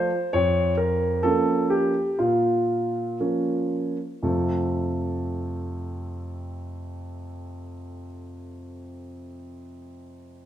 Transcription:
Already playing: C5
0.33 F2 C#5
0.77 A#4
1.23 F3 A#3 C#4 A4
1.70 G4
2.19 A#2 F4
3.20 F3 A#3 C#4
4.23 F2 C3 A3 C4 F4 A4

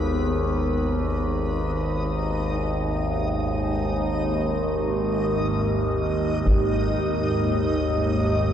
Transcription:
Already playing: G#1 D#2
0.05 G#2 D#4 D#5
0.87 G4
1.47 A#3
3.11 D#5
6.47 taiko

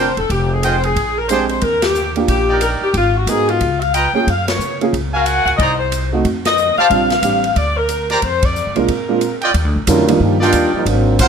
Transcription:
Already playing: F1 D4 A#4 C5 G5
0.00 C5
0.17 E1 A4, ride
0.29 F1 G4, kick, ride
0.53 G#4
0.63 F4 G#4 C5 D#5 G5, hi-hat pedal, ride
0.83 G#4, ride
0.96 A#1, kick, ride
1.19 A#4
1.29 G#3 C4 D4 G4 G#4 C5 G5, hi-hat pedal, ride
1.49 C5, ride
1.61 D#2 A#4, kick, ride
1.82 G4, snare, ride
1.95 hi-hat pedal
2.16 A#3 D4 F4 G4, ride
2.28 A#1 G4, kick, ride
2.49 D#4 A#4 D5 G5
2.61 A#4, hi-hat pedal, ride
2.81 G4, muted upright bass stroke
2.94 G#1 F4, kick, ride
3.17 F#4
3.26 G#2 B3 D#4 F#4 G#4 A#4, hi-hat pedal, ride
3.49 F4, ride
3.61 C#2, kick, ride
3.81 F5, ride
3.94 F4 B4 D#5 G5 A#5, hi-hat pedal, ride
4.13 A#3 C#4 F4 G#4 G5, muted upright bass stroke
4.27 F#2 F5, kick, ride
4.48 C#5, snare, ride
4.59 C#3, hi-hat pedal
4.81 A#3 C#4 F4 G#4, ride
4.93 C#2, kick, ride
5.13 F#4 A#4 F5 G#5
5.26 F#5, hi-hat pedal, ride
5.45 C#2 F#5, ride
5.57 C2 D#4 C5 D5 D#5 A#5, kick, ride
5.79 C5
5.92 hi-hat pedal, ride
6.12 A3 C4 D#4 F#4
6.24 F2, kick, ride
6.45 D#5, snare, ride
6.57 hi-hat pedal
6.77 G4 C5 D5 F5 A5, muted upright bass stroke
6.90 A#1 G3 C4 D4 F4, kick, ride
7.10 F5, snare, ride
7.22 A1 G3 C4 D4 G4, hi-hat pedal, ride
7.44 ride
7.56 D2 D5, kick, ride
7.77 A#4
7.89 hi-hat pedal, ride
8.10 G4 A#4 C5 D5 A#5, snare, ride
8.22 F2 C5, kick, ride
8.43 D5, kick, ride
8.56 hi-hat pedal
8.66 D2
8.75 C2 A#2 G#3 C4 D4 F4 A#4, ride
8.88 kick, ride
9.08 A#2 G#3 C4 D4 F4
9.21 hi-hat pedal, ride
9.41 F4 D5 D#5 G5, ride
9.54 D#2, kick, ride
9.65 D2
9.76 A#1
9.87 F2 D3 F#3 G3 A3 C#4 D4 E4 F4 A#4, kick, hi-hat pedal, ride
10.07 D#3 G3 A#3 D4 F4, ride
10.20 G2 F3 A#3 D4 G4, kick
10.40 G3 A#3 D4 D#4 F4 D5 G5, snare
10.52 D#2, kick, hi-hat pedal, ride
10.73 F3 G3 A#3 D#4, muted upright bass stroke
10.86 G#1 F#3 A#3 C4 D4, kick, ride
11.19 A#1 D#3 F#3 A#3 C4 F4 A#4 C5 F#5, kick, hi-hat pedal, ride

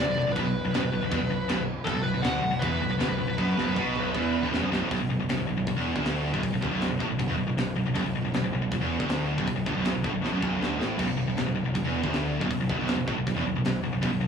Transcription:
Already playing: D5
0.06 B0 B1
0.15 B0 B1
0.25 B0 B1
0.32 B0 B1 B4, kick
0.37 china
0.44 B0 B1
0.62 B0 B1
0.72 F#1 F#2, snare, china
0.82 B0 B1
0.91 B0 B1
1.01 B0 B1
1.11 E1 E2, kick, china
1.20 B0 B1
1.30 B0 B1
1.47 B0 B1, snare, china
1.57 B0 B1
1.85 B0 B1 A4, kick, china
1.95 B0 B1
2.03 B0 B1 B4
2.14 B0 B1
2.22 D1 D2 F#5, snare, china
2.42 B0 B1
2.51 B0 B1
2.59 E1 E2 B4, kick, china
2.81 B0 B1
2.90 B0 B1
2.98 D1 D2, snare, china
3.08 B0 B1
3.18 B0 B1
3.26 B0 B1
3.38 F#1 F#2, kick
3.56 B0 B1, snare
3.66 F#1 F#2
3.76 B1 B2, kick
3.95 B0 B1, mid tom
4.15 E1 E2, kick
4.43 D1 D2
4.53 E1 E2, snare
4.62 F#1 F#2
4.71 B0 B1, snare
4.81 A1 A2
4.91 B0 B1, kick, open hi-hat
5.01 B0 B1
5.09 B0 B1
5.20 B0 B1
5.29 B0 B1, snare, open hi-hat
5.38 B0 B1
5.47 B0 B1
5.57 B0 B1
5.66 B0 B1, kick, open hi-hat
5.76 E1 E2
5.95 D1 D2, kick
6.05 snare, open hi-hat
6.33 B0 B1, kick
6.43 B0 B1, kick, open hi-hat
6.53 B0 B1
6.62 D1 D2, kick
6.71 B0 B1
6.81 snare, open hi-hat
6.90 B0 B1
6.99 A1 A2, kick
7.09 B0 B1
7.18 B0 B1, kick, open hi-hat
7.29 E1 E2
7.37 B0 B1
7.47 B0 B1
7.58 B0 B1, snare, open hi-hat
7.76 B0 B1
7.86 B0 B1
7.94 B0 B1, kick, open hi-hat
8.05 B0 B1
8.14 B0 B1
8.24 B0 B1
8.33 B0 B1, snare, open hi-hat
8.43 B0 B1
8.53 B0 B1
8.62 B0 B1
8.71 B0 B1, kick, open hi-hat
8.81 E1 E2
9.00 D1 D2, kick
9.09 snare, open hi-hat
9.37 B0 B1, kick
9.47 B0 B1, kick, open hi-hat
9.55 B0 B1
9.66 D1 D2, kick
9.75 B0 B1
9.85 snare, open hi-hat
9.94 B0 B1
10.04 A1 A2, kick
10.13 B0 B1
10.22 A1 A2, snare
10.32 F#1 F#2
10.40 B0 B1, kick
10.59 D1 D2, snare
10.78 A1 A2, snare
10.98 B0 B1, kick, open hi-hat, crash
11.07 B0 B1
11.17 B0 B1
11.27 B0 B1
11.37 B0 B1, snare, open hi-hat
11.46 B0 B1
11.55 B0 B1
11.65 B0 B1
11.74 B0 B1, kick, open hi-hat
11.84 E1 E2
12.03 D1 D2, kick
12.13 snare, open hi-hat
12.40 B0 B1, kick
12.50 B0 B1, kick, open hi-hat
12.59 B0 B1
12.69 D1 D2, kick
12.79 B0 B1
12.88 snare, open hi-hat
12.97 B0 B1
13.07 A1 A2, kick
13.16 B0 B1
13.27 B0 B1, kick, open hi-hat
13.36 E1 E2
13.45 B0 B1
13.54 B0 B1
13.64 B0 B1, snare, open hi-hat
13.83 B0 B1
13.92 B0 B1
14.02 B0 B1, kick, open hi-hat
14.12 B0 B1
14.21 B0 B1

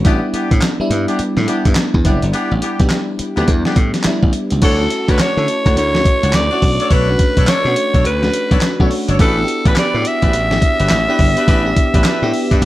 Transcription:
0.04 A1 G3 B3 D4 E4 G4, kick, closed hi-hat
0.33 B3 D4 G4, muted slap bass stroke, closed hi-hat
0.51 A2, kick, closed hi-hat
0.61 snare, clap, closed hi-hat
0.80 G3 B3 D4 E4, muted slap bass stroke
0.90 G2, closed hi-hat
1.08 B3 D4 G4, closed hi-hat
1.19 muted slap bass stroke, closed hi-hat
1.37 A2, snare
1.47 G3 B3 D4 E4 G4, closed hi-hat
1.65 G2, kick, closed hi-hat
1.75 snare, clap, closed hi-hat
1.94 E2, kick
2.05 F#1 G3 B3 D4 E4 G4, kick, closed hi-hat
2.22 G1, closed hi-hat
2.33 B3 D4 G4, closed hi-hat
2.51 A1
2.62 B3 D4 G4, closed hi-hat
2.79 B1 G3 B3 D4 G4, kick, closed hi-hat
2.90 snare, clap, closed hi-hat
3.19 muted slap bass stroke, closed hi-hat
3.36 D2 G3 B3 D4 E4 G4, closed hi-hat
3.48 E2, kick, closed hi-hat
3.65 B3 D4 G4, snare
3.76 A2, kick, closed hi-hat
3.94 snare, closed hi-hat
4.04 G3 B3 D4 E4, muted slap bass stroke, snare, clap, closed hi-hat
4.22 A1, kick
4.33 closed hi-hat
4.50 C#2, closed hi-hat
4.62 D2 D4 F#4 A4 C#5, kick, closed hi-hat, crash
4.79 A3 C#4 E4 F#4
4.90 closed hi-hat
5.08 D2 D4 F#4 B4 C#5, kick, closed hi-hat
5.18 D4 F#4 C#5, muted slap bass stroke, snare, clap, closed hi-hat
5.37 D3 A3 C#4 E4 A4
5.48 closed hi-hat
5.65 D2 D4 F#4 C#5, kick, closed hi-hat
5.76 D2 C#5, closed hi-hat
5.94 A3 C#4 E4 F#4, snare
6.05 kick, closed hi-hat
6.22 C#2 D4 F#4 C#5, closed hi-hat
6.33 D2 D5, snare, clap, closed hi-hat
6.51 A3 C#4 D4 E4 F#4 C#5
6.62 B1 A3 C#4 D4 F#4, kick, open hi-hat
6.80 D4 A4 C#5, closed hi-hat
6.90 B1 D4 A4 B4 C#5, kick, closed hi-hat
7.09 A3 C#4 D4 F#4
7.19 kick, closed hi-hat
7.37 B1 D4 A4 C#5, kick, closed hi-hat
7.47 D4 A4 C#5, muted slap bass stroke, snare, clap, closed hi-hat
7.65 B2 A3 C#4 D4 F#4
7.76 closed hi-hat
7.94 B1 D4 A4 C#5, kick, closed hi-hat
8.04 D2 B4, closed hi-hat
8.23 A3 C#4 D4 F#4, snare
8.33 closed hi-hat
8.51 B1 D4 A4 C#5, kick, closed hi-hat
8.61 snare, clap, closed hi-hat
8.79 B1 A3 C#4 D4 F#4 A4 C#5, kick
8.91 open hi-hat
9.08 G1 D4 A4 C#5, closed hi-hat
9.18 A1 D4 G4 A4 B4, kick, closed hi-hat
9.37 B3 D4 E4 F#4
9.44 G4, closed hi-hat
9.65 A1 D4 G4 B4, kick, closed hi-hat
9.75 D4 G4 B4 D5, muted slap bass stroke, snare, clap, closed hi-hat
9.94 A2 B3 D4 E4 F#4
10.02 G4, closed hi-hat
10.07 E5
10.22 A1 D4 G4 B4, kick, closed hi-hat
10.33 A1, closed hi-hat
10.51 B3 D4 E4 G4, snare
10.62 kick, closed hi-hat
10.79 G1 D4 G4 B4, closed hi-hat
10.89 A1, snare, clap, closed hi-hat
11.08 B3 D4 E4 G4 B4
11.19 G1, kick, open hi-hat
11.36 D4 G4 B4, closed hi-hat
11.47 A1 D4 G4 B4, kick, closed hi-hat
11.65 B3 D4 E4 G4
11.76 kick, closed hi-hat
11.93 A1 D4 G4 B4, kick, closed hi-hat
12.04 D4 G4 B4, muted slap bass stroke, snare, clap, closed hi-hat
12.22 A2 B3 D4 E4 G4
12.33 open hi-hat
12.51 G2 D4 G4 B4, kick, closed hi-hat
12.61 A1

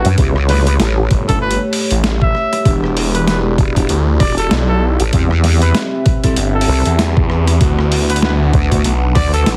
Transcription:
Already playing: D4 B4 F#5
0.05 F#2, closed hi-hat
0.18 C#2 A3 B3 C#4 E4 G4 C#5, kick, closed hi-hat
0.36 cross-stick
0.49 B4, snare, open hi-hat
0.53 snare
0.58 snare
0.62 snare
0.67 B4, closed hi-hat
0.80 A1, snare, closed hi-hat
1.11 G1, kick, closed hi-hat
1.28 B3 C#4 E4 A4, kick, closed hi-hat
1.42 B4
1.51 closed hi-hat
1.73 open hi-hat
1.91 A1, closed hi-hat
2.04 snare, closed hi-hat
2.22 E5, kick
2.35 cross-stick
2.53 cross-stick, closed hi-hat
2.65 E1 B3 D4 E4 G4 D5, kick, closed hi-hat
2.84 cross-stick
2.97 open hi-hat
3.15 B4, closed hi-hat
3.28 B4, snare, closed hi-hat
3.58 E1, kick, closed hi-hat
3.76 B3 D4 E4 G4, kick, closed hi-hat
3.89 D2, closed hi-hat
4.20 E1 D5, kick, cross-stick, open hi-hat
4.38 A4, closed hi-hat
4.51 B1, snare, closed hi-hat
4.68 A4
5.00 A1, closed hi-hat
5.13 E2 G3 C4 E4 G4 E5, kick, closed hi-hat
5.31 cross-stick
5.44 snare, open hi-hat
5.61 B4, closed hi-hat
5.75 snare, closed hi-hat
6.06 kick, closed hi-hat
6.24 G3 C4 E4 A4, kick, closed hi-hat
6.36 G1, closed hi-hat
6.55 A4
6.61 open hi-hat
6.68 C2
6.86 E2, closed hi-hat
6.99 snare, closed hi-hat
7.17 kick
7.30 cross-stick
7.47 cross-stick, closed hi-hat
7.60 D2 A3 B3 D4 E4 F#4 B4 F#5, kick, closed hi-hat
7.79 cross-stick
7.92 open hi-hat
8.10 B4, closed hi-hat
8.16 closed hi-hat
8.22 B4, snare
8.53 D2, kick, closed hi-hat
8.71 A3 B3 E4 F#4, kick, closed hi-hat
8.84 B1, closed hi-hat
9.15 D2 D5, kick, cross-stick, open hi-hat
9.33 A4, closed hi-hat
9.46 A1, snare, closed hi-hat

